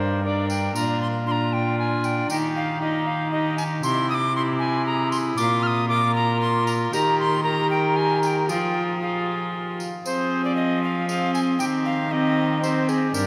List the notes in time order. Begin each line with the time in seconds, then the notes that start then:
Already playing: G2 D4 A#4 C5
0.24 D4 A#4 D5
0.50 G5, tambourine
0.75 A#2 D4 F4 A#5, tambourine
1.01 C6
1.27 D4 F4 C6
1.31 A#5
1.53 G5
1.79 G#5
2.04 G5, tambourine
2.30 D#3 D#4 G4 G5, tambourine
2.56 F5
2.81 D#4 G4 D#5
3.07 F5
3.32 D#4 G4 D#5
3.57 G#5, tambourine
3.83 C3 E4 G4 C6, tambourine
4.10 D#6
4.14 D6
4.35 E4 G4 C6
4.59 G#5
4.86 G#4 A#5
5.11 C6, tambourine
5.37 A#2 F4 A#4 D6, tambourine
5.63 F6
5.67 D#6
5.89 F4 A#4 D6
6.15 A#5
6.41 C6
6.67 A#5, tambourine
6.92 D#3 G4 A#4 A#5, tambourine
7.19 C6
7.44 G4 A#4 A#5
7.70 G5
7.96 G#5
8.23 G5 G#5, tambourine
8.49 F3 F4 G#4 G5, tambourine
9.01 F4 G#4 F5
9.80 tambourine
10.05 F3 C4 G#4 C5, tambourine
10.44 D5
10.56 D#5
10.83 F5
11.09 C4 G#4 F5, tambourine
11.34 G#5, tambourine
11.59 D#3 C4 G4 G5, tambourine
11.85 F5
12.11 C4 G4 D#5
12.62 C4 G4 C5, tambourine
12.89 G#4, tambourine
13.14 G2 D4 G4 A#4, tambourine